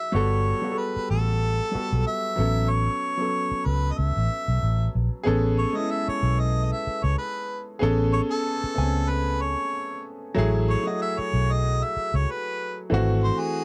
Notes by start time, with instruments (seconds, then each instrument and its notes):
Already playing: grand piano F#3 D#4 E4 F#4 G#4, harmonica E5
0.12 fingered electric bass G1, grand piano G3 B3 F#4 A4, harmonica C#5
0.62 grand piano G3 B3 F#4 G#4
0.72 grand piano A4
0.78 harmonica B4
0.96 muted fingered electric bass stroke
1.10 fingered electric bass A1, harmonica A4
1.72 grand piano G3 B3 F#4, muted fingered electric bass stroke
1.76 grand piano A4
1.92 fingered electric bass B1
2.07 harmonica E5
2.36 fingered electric bass A1, grand piano F#3 B3 C#4
2.40 grand piano A4
2.70 harmonica C#5
3.18 grand piano F#3 B3 C#4 A4
3.51 muted fingered electric bass stroke
3.66 fingered electric bass C#2, harmonica B4
3.92 harmonica D#5
3.98 fingered electric bass C#2, harmonica E5
4.17 fingered electric bass A1
4.48 fingered electric bass B1
4.63 fingered electric bass A1
4.95 fingered electric bass A#1
5.24 fingered electric bass A1, grand piano B3 C#4 G#4 A4
5.59 harmonica C#5
5.73 grand piano G#3 B3 C#4 E4, harmonica D#5
5.91 harmonica E5
6.08 harmonica C#5, muted fingered electric bass stroke
6.23 fingered electric bass B1
6.40 harmonica D#5
6.65 harmonica D#5
6.72 harmonica E5
6.87 muted fingered electric bass stroke
7.03 fingered electric bass C#2, harmonica C#5
7.18 harmonica B4
7.79 fingered electric bass A1, grand piano B3 C#4 G#4 A4
8.13 harmonica C#5
8.30 harmonica A4
8.64 muted fingered electric bass stroke
8.75 fingered electric bass C#2, grand piano A3 B3 C4 G#5
8.83 grand piano C#4
9.09 harmonica B4
9.41 harmonica C#5
10.34 fingered electric bass A1, grand piano F#3 A3 E4 G#4
10.70 harmonica C#5
10.83 grand piano F#3 A3 E4 F#4, harmonica D#5
11.02 harmonica E5
11.18 harmonica C#5, muted fingered electric bass stroke
11.33 fingered electric bass B1
11.52 harmonica D#5
11.83 harmonica E5
11.97 muted fingered electric bass stroke
12.14 fingered electric bass C#2, harmonica C#5
12.31 harmonica B4
12.90 fingered electric bass G#1, grand piano E3 A3 C4
12.94 grand piano F#4
13.24 harmonica C5
13.40 harmonica G#4